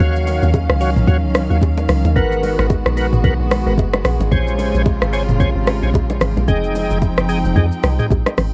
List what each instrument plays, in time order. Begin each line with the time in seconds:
Already playing: string section D#3 F5
0.00 log drum bass D#2, string section F#3 C#4, tonewheel organ F#4 C#5 F5, kick, low conga, shaker
0.16 shaker
0.27 open hi-hat, low bongo, shaker
0.42 log drum bass D#2, shaker
0.54 kick, high bongo, shaker
0.70 log drum bass C#2, cross-stick, shaker
0.81 tonewheel organ F#4 C#5 F5, open hi-hat, shaker
0.96 log drum bass A#1, mid tom, shaker
1.08 log drum bass D#2, tonewheel organ F#4 C#5 F5, kick, low conga, shaker
1.24 log drum bass C#2
1.35 cross-stick, open hi-hat, low bongo, shaker
1.50 log drum bass D#2, tonewheel organ F#4 C#5 F5, shaker
1.62 log drum bass D#2, kick, high bongo, shaker
1.78 low bongo, shaker
1.89 log drum bass C#2, cross-stick, open hi-hat, low conga, shaker
2.05 log drum bass D#2, low bongo, shaker
2.16 log drum bass G#1, string section G#3 B3 F#4, tonewheel organ A#4 B4 F#5, kick, low conga, shaker
2.32 shaker
2.43 open hi-hat, low bongo, shaker
2.59 log drum bass G#1, cross-stick, shaker
2.70 kick, high bongo, shaker
2.86 log drum bass A#1, cross-stick, shaker
2.97 tonewheel organ A#4 B4 F#5, open hi-hat, shaker
3.13 log drum bass G#1, mid tom, shaker
3.24 log drum bass B1, tonewheel organ A#4 B4 F#5, kick, low conga, shaker
3.40 log drum bass A#1
3.51 cross-stick, open hi-hat, low bongo, shaker
3.66 log drum bass G#1, tonewheel organ A#4 B4 F#5, shaker
3.78 log drum bass F#1, kick, high bongo, shaker
3.94 cross-stick, low bongo, shaker
4.05 log drum bass A#1, cross-stick, open hi-hat, low conga, shaker
4.21 log drum bass G#1, low bongo, shaker
4.32 log drum bass A#1, string section C3 C#3 F4, tonewheel organ C5 C#5 G#5, kick, low conga, shaker
4.48 shaker
4.59 open hi-hat, low bongo, shaker
4.75 log drum bass A#1, shaker
4.86 kick, high bongo, shaker
5.02 log drum bass G#1, cross-stick, shaker
5.13 tonewheel organ C5 C#5 G#5, open hi-hat, shaker
5.29 log drum bass F#1, mid tom, shaker
5.40 log drum bass A#1, tonewheel organ C5 C#5 G#5, kick, low conga, shaker
5.56 log drum bass G#1
5.67 cross-stick, open hi-hat, low bongo, shaker
5.83 log drum bass A#1, tonewheel organ C5 C#5 G#5, shaker
5.94 log drum bass A#1, kick, high bongo, shaker
6.10 low bongo, shaker
6.21 log drum bass G#1, cross-stick, open hi-hat, low conga, shaker
6.37 log drum bass A#1, low bongo, shaker
6.48 log drum bass F1, string section F3 C4 D#4 G5, tonewheel organ G#4 D#5 G5, kick, low conga, shaker
6.64 shaker
6.75 open hi-hat, low bongo, shaker
6.91 log drum bass F1, shaker
7.02 kick, high bongo, shaker
7.18 log drum bass F#1, cross-stick, shaker
7.29 tonewheel organ G#4 D#5 G5, open hi-hat, shaker
7.45 log drum bass F1, shaker
7.56 log drum bass F2, tonewheel organ G#4 D#5 G5, kick, low conga, shaker
7.72 shaker
7.83 log drum bass C2, cross-stick, open hi-hat, low bongo, shaker
7.99 tonewheel organ G#4 D#5 G5, mid tom, shaker
8.10 log drum bass A#1, kick, high bongo, shaker
8.26 cross-stick, low bongo, shaker
8.37 log drum bass G#1, cross-stick, open hi-hat, low conga, shaker